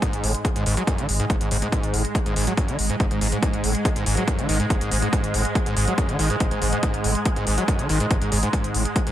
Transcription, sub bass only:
0.13 0.23 G#1 medium
0.23 0.34 G#1 medium
0.56 0.66 G#1 medium
0.66 0.77 G#1 medium
0.98 1.08 G#1 medium
1.09 1.19 G#1 loud
1.30 1.41 G#1 medium
1.41 1.51 G#1 medium
1.51 1.62 G#1 loud
1.84 1.93 G#1 medium
1.94 2.05 G#1 loud
2.26 2.36 G#1 medium
2.36 2.47 G#1 loud
2.68 2.78 G#1 medium
2.79 2.89 G#1 loud
3.00 3.10 G#1 medium
3.11 3.21 G#1 medium
3.21 3.32 G#1 loud
3.54 3.63 G#1 medium
3.64 3.75 G#1 loud
3.96 4.06 G#1 medium
4.06 4.17 G#1 loud
4.39 4.48 G#1 medium
4.49 4.60 G#1 loud
4.70 4.80 G#1 medium
4.81 4.91 G#1 medium
4.91 5.02 G#1 loud
5.24 5.33 G#1 medium
5.34 5.45 G#1 loud
5.66 5.76 G#1 medium
5.76 5.87 G#1 medium
6.09 6.18 G#1 medium
6.19 6.30 G#1 loud
6.40 6.51 G#1 medium
6.51 6.61 G#1 medium
6.62 6.72 G#1 loud
6.94 7.04 G#1 medium
7.04 7.15 G#1 loud
7.36 7.46 G#1 medium
7.47 7.58 G#1 loud
7.79 7.89 G#1 medium
7.89 8.00 G#1 loud
8.11 8.21 G#1 medium
8.22 8.31 G#1 medium
8.32 8.43 G#1 loud
8.64 8.74 G#1 medium
8.74 8.85 G#1 loud
9.07 9.12 G#1 medium

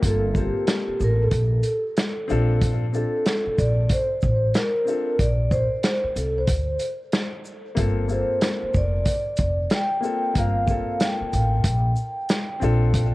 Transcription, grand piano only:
0.01 0.29 A#3 medium
0.01 0.30 C4 medium
0.01 0.30 F4 medium
0.01 0.31 A4 medium
0.33 1.36 A#3 medium
0.33 1.37 C4 medium
0.33 1.38 F4 medium
0.37 1.38 A4 medium
2.28 2.83 C4 medium
2.28 2.84 D4 medium
2.28 2.85 F4 medium
2.28 2.85 A4 loud
2.93 3.95 C4 medium
2.93 3.96 D4 medium
2.93 3.96 F4 medium
2.97 3.97 A4 medium
4.85 5.13 C4 medium
4.85 5.14 D4 medium
4.85 5.15 F4 medium
4.85 5.15 A4 medium
7.75 8.03 A#3 medium
7.75 8.04 C4 medium
7.75 8.05 F4 medium
7.75 8.05 A4 medium
8.08 9.11 A#3 medium
8.08 9.11 C4 medium
8.08 9.12 F4 medium
8.08 9.12 A4 medium
10.01 10.29 A#3 medium
10.01 10.29 C4 medium
10.01 10.30 F4 medium
10.05 10.31 A4 medium
10.34 10.62 A#3 medium
10.34 10.62 C4 medium
10.34 10.63 F4 medium
10.38 10.64 A#4 medium
10.67 11.69 A#3 medium
10.67 11.70 C4 medium
10.67 11.70 F4 medium
10.67 11.71 A4 medium
12.60 13.14 C4 medium
12.60 13.14 D4 medium
12.60 13.14 F4 medium
12.60 13.14 A4 medium

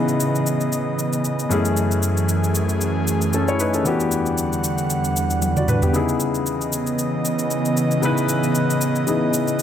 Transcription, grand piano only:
0.00 1.47 C#3 medium
0.00 1.47 B3 medium
0.00 1.47 D#4 medium
0.00 1.48 E4 medium
0.00 1.48 G#4 medium
1.49 3.55 F#2 medium
1.49 3.55 A3 medium
1.49 3.30 C#4 medium
1.49 3.30 E4 medium
1.49 3.31 G#4 medium
3.34 3.48 C#4 medium
3.34 3.47 A4 medium
3.48 3.60 E4 medium
3.48 3.59 C#5 medium
3.60 3.74 D#4 medium
3.60 3.73 B4 medium
3.75 3.99 C#4 soft
3.75 3.99 A4 medium
3.84 5.90 E3 medium
3.84 5.39 B3 medium
3.84 5.39 D4 medium
3.84 5.40 F#4 medium
3.84 5.40 G4 medium
5.57 5.68 F#4 medium
5.57 5.68 D5 medium
5.69 5.82 D4 medium
5.69 5.82 B4 medium
5.83 5.92 B3 medium
5.83 6.08 G4 medium
5.93 7.98 C#3 medium
5.93 7.99 B3 medium
5.93 7.99 D#4 medium
5.93 8.00 E4 medium
5.93 8.00 G#4 medium
8.02 9.05 C#3 medium
8.02 9.05 B3 medium
8.02 9.05 D#4 medium
8.02 9.06 E4 medium
8.02 9.06 B4 medium
9.07 9.62 C#3 medium
9.07 9.62 B3 medium
9.07 9.62 D#4 medium
9.07 9.62 E4 medium
9.07 9.62 G#4 medium

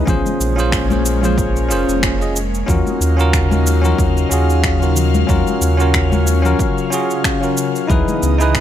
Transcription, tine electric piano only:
0.06 0.53 C#4 medium
0.06 0.53 F4 medium
0.06 0.54 G#4 medium
0.06 0.55 C5 loud
0.56 0.85 C#4 medium
0.56 0.86 F4 medium
0.56 0.87 G#4 medium
0.56 0.87 C5 medium
0.89 1.18 C#4 medium
0.89 1.19 F4 medium
0.89 1.19 G#4 medium
0.89 1.20 C5 medium
1.21 1.66 C#4 medium
1.21 1.67 F4 medium
1.21 1.67 G#4 medium
1.21 1.68 C5 loud
1.68 2.16 C#4 medium
1.68 2.17 F4 medium
1.68 2.17 G#4 medium
1.68 2.18 C5 medium
2.19 2.37 C#4 medium
2.19 2.37 F4 medium
2.19 2.38 G#4 medium
2.19 2.38 D#5 medium
2.66 3.14 C#4 medium
2.66 3.14 F4 medium
2.66 3.15 F#4 medium
2.66 3.15 A#4 medium
3.17 3.46 C#4 medium
3.17 3.47 F4 medium
3.17 3.47 F#4 medium
3.17 3.48 A#4 loud
3.49 3.79 C#4 medium
3.49 3.79 F4 medium
3.49 3.80 F#4 medium
3.49 3.81 A#4 medium
3.81 4.27 C#4 medium
3.81 4.27 F4 medium
3.81 4.28 F#4 medium
3.81 4.28 A#4 medium
4.29 4.77 C#4 medium
4.29 4.77 F4 medium
4.29 4.78 F#4 medium
4.29 4.79 G#4 medium
4.80 5.25 C#4 medium
4.80 5.25 F4 medium
4.80 5.26 F#4 medium
4.80 5.26 A#4 medium
5.27 5.74 C#4 medium
5.27 5.75 F4 medium
5.27 5.76 F#4 medium
5.27 5.76 A#4 medium
5.77 6.07 C#4 medium
5.77 6.08 F4 medium
5.77 6.08 F#4 medium
5.77 6.09 A#4 loud
6.10 6.39 C#4 medium
6.10 6.40 F4 medium
6.10 6.41 F#4 medium
6.10 6.41 A#4 medium
6.42 6.87 C#4 medium
6.42 6.88 F4 medium
6.42 6.89 F#4 medium
6.42 6.89 A#4 medium
6.90 7.38 C#4 medium
6.90 7.38 F4 medium
6.90 7.39 F#4 medium
6.90 7.39 G#4 medium
7.41 7.85 C#4 medium
7.41 7.86 F4 medium
7.41 7.87 F#4 medium
7.41 7.87 A#4 medium
7.87 8.35 D#4 medium
7.87 8.36 E4 medium
7.87 8.36 G#4 medium
7.87 8.37 B4 medium
8.38 8.60 D#4 medium
8.38 8.60 E4 medium
8.38 8.60 G#4 medium
8.38 8.60 B4 loud

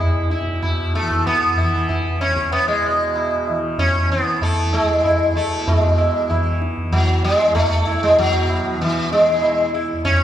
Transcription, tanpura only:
0.00 2.25 E2 medium
0.00 0.40 B2 medium
0.00 1.02 E3 medium
0.40 2.87 B2 medium
1.02 1.64 E3 medium
1.64 3.49 E3 medium
2.25 4.70 E2 soft
2.87 5.31 B2 medium
3.49 4.09 E3 medium
4.09 6.29 E3 medium
4.70 7.49 E2 medium
5.32 5.67 B2 soft
5.67 8.10 B2 medium
6.29 6.89 E3 medium
6.89 8.72 E3 medium
7.50 9.92 E2 medium
8.10 10.23 B2 medium
8.72 9.32 E3 medium
9.32 10.23 E3 medium
9.92 10.23 E2 medium

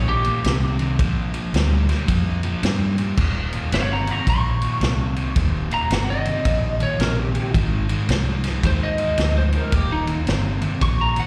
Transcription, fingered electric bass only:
0.00 0.28 A#1 loud
0.45 0.99 C2 medium
0.99 1.37 A#1 loud
1.54 1.92 D2 loud
2.08 2.46 F2 loud
2.63 3.01 G2 loud
3.18 3.55 D#1 medium
3.72 4.10 G1 medium
4.27 4.65 A#1 medium
4.81 5.19 C2 medium
5.36 5.74 D#1 medium
5.90 6.28 G1 medium
6.46 6.83 A#1 medium
6.98 7.37 A#1 medium
7.54 7.92 G#1 medium
8.09 8.47 C2 medium
8.63 9.01 D#2 loud
9.18 9.56 D2 medium
9.73 10.11 D#1 medium
10.27 10.65 G1 medium
10.81 11.19 A#1 medium

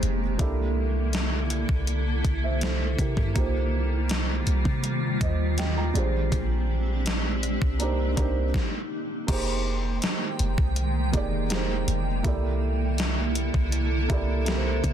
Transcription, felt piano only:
0.00 0.41 G#3 medium
0.00 0.42 C4 medium
0.00 0.41 D#4 medium
0.00 0.41 G4 medium
0.00 0.42 C5 loud
0.38 1.49 A#3 medium
0.38 1.50 D4 medium
0.38 1.50 E4 medium
0.38 1.51 G4 medium
0.42 1.52 A4 medium
2.44 2.61 C5 medium
2.44 2.61 E5 medium
2.62 2.98 A4 medium
2.62 2.97 C5 medium
3.00 3.17 G4 medium
3.00 3.17 A#4 medium
3.18 3.53 A4 medium
3.34 4.46 A#3 medium
3.34 4.46 D#4 medium
3.34 4.47 F4 medium
3.34 4.47 G4 medium
3.39 4.48 C5 loud
5.22 5.57 C5 medium
5.22 5.56 D#5 medium
5.59 5.76 D#5 medium
5.59 5.76 G5 medium
5.77 6.12 G5 medium
5.77 6.12 A#5 medium
5.94 7.13 G#3 medium
5.94 7.13 D4 medium
5.94 7.14 F4 medium
5.94 7.14 G4 medium
5.98 7.15 C5 loud
7.79 8.09 A#3 medium
7.79 8.10 D4 medium
7.79 8.10 D#4 medium
7.79 8.11 G4 medium
7.83 8.11 C5 medium
8.16 8.44 A#3 medium
8.16 8.45 D4 medium
8.16 8.45 D#4 medium
8.16 8.46 G4 medium
8.21 8.47 C5 medium
9.27 10.38 A#3 medium
9.27 10.39 D#4 medium
9.27 10.39 G4 medium
9.27 10.40 G#4 medium
9.32 10.41 C5 loud
11.12 11.40 A#3 medium
11.12 11.41 D#4 medium
11.12 11.42 G4 medium
11.12 11.42 G#4 medium
11.17 11.43 D5 loud
11.49 12.05 A#3 medium
11.49 12.06 D#4 medium
11.49 12.06 G4 medium
11.49 12.07 G#4 medium
11.54 12.08 C5 medium
12.23 13.35 A#3 medium
12.23 13.35 E4 medium
12.23 13.36 G4 medium
12.23 13.36 A4 medium
12.28 13.37 D5 loud
14.08 14.37 A#3 loud
14.08 14.37 E4 medium
14.08 14.38 G4 medium
14.08 14.39 A4 medium
14.13 14.39 D5 loud
14.45 14.93 A#3 medium
14.45 14.93 E4 medium
14.45 14.93 G4 medium
14.45 14.93 A4 medium
14.50 14.55 A#4 medium
14.56 14.93 C5 medium

